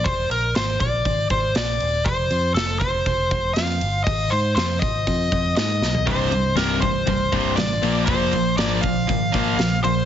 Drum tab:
HH |o-o-o-o-o-o-o-o-|o-o-o-o-o-o-o-o-|o-o-o-o-o-o-o---|o-o-o-o-o-o-o-o-|
SD |----o-------o---|----o-------o---|----o-------o-o-|----o-------o---|
FT |----------------|----------------|---------------o|----------------|
BD |o-----o-o-o-----|o-----o-o-o-----|o-----o-o-o-----|o-----o-o-o-----|

HH |o-o-o-o-o-o-o-o-|
SD |----o-------o---|
FT |----------------|
BD |o-----o-o-o-----|